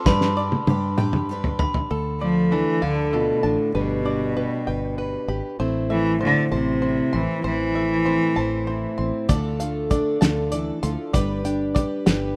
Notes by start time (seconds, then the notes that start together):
0.06 G2 G3 D4 G4 B4 B5, kick, snare
0.21 snare
0.37 D4 G4 B4 D5
0.52 high tom
0.67 G2 G3 D4 G4 B4, high tom
0.98 G3 D4 G4 B4 G5, mid tom
1.13 mid tom
1.29 G3 D4 G4 B4
1.44 floor tom
1.59 D4 G4 B4 B5, floor tom
1.74 floor tom
1.90 D2 D3 A4
2.20 F3 A3 D5
2.51 E3 D4 A4
2.82 D2 D3 A4 F5
3.13 B2 F4 A4
3.43 A1 A2 D4 A5
3.75 G1 B2 G3 D4 G4 B4
4.05 D4 D5
4.37 G4 B4
4.67 G1 B4 G5
4.98 B4
5.28 G#1 G4 B5
5.59 A1 A2 A3 C4 E4 C5
5.90 E3 A3 E5
6.21 D3 C4 C5
6.52 A1 C3 C5 A5
6.82 E4 C5
7.13 A1 E3 C4 C6
7.44 A1 A2 E3 C5
7.75 A3 E5
8.05 C4 C5
8.36 A1 C5 A5
8.67 E4 C5
8.98 A1 C4 C6
9.29 D2 D3 A3 D4 F4 A4 D5, kick, closed hi-hat
9.59 A3 D4 F4 A4 F5, closed hi-hat
9.90 A3 D4 F4 A4 D5, kick, closed hi-hat
10.21 D2 D3 A3 D4 F4 A4 A5, snare, closed hi-hat
10.52 E3 A3 D4 A4 D5, closed hi-hat
10.83 D2 F3 D4 F4 A4 C6, closed hi-hat
11.13 G1 G3 D4 G4 B4 D5, kick, closed hi-hat
11.44 D4 G4 B4 G5, closed hi-hat
11.75 G3 D4 G4 B4 D5, kick, closed hi-hat
12.06 G1 G3 D4 G4 B4 B5, snare, closed hi-hat